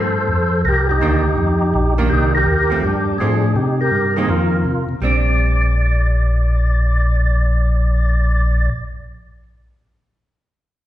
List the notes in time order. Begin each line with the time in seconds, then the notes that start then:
Already playing: G2 A4 C5
0.29 F2
0.65 C2 G4 A#4
0.89 D#4 G4
1.01 D2 D#3 A#3 D4
1.38 F2
1.74 A#1
1.98 D#3 A#3 D4
2.10 C2 D#4 G4
2.35 G4 A#4
2.46 D#2
2.70 F3 A3 C4
2.83 G2 D4 G4
3.18 A2 F3 A3 C4 D4 G#4
3.56 C3 D#4 G4
3.81 G4 A#4
3.91 G2
4.16 D#3 A#3 C4 D#4 G#4
4.29 F2 F4 A#4
4.65 C3
4.89 C3
5.01 A#1 G3 C4 D4 D5